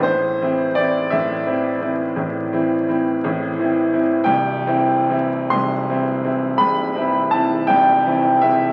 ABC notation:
X:1
M:12/8
L:1/8
Q:3/8=56
K:C
V:1 name="Grand piano"
c2 d e8 z | g3 c'3 b2 a g2 e |]
V:2 name="Grand piano" clef=bass
[A,,,A,,] [E,CE] [E,CE] [A,,,A,,] [E,CE] [E,CE] [A,,,A,,] [E,CE] [E,CE] [A,,,A,,] [E,CE] [E,CE] | [C,,,C,,] [E,CE] [E,CE] [C,,,C,,] [E,CE] [E,CE] [C,,,C,,] [E,CE] [E,CE] [C,,,C,,] [E,CE] [E,CE] |]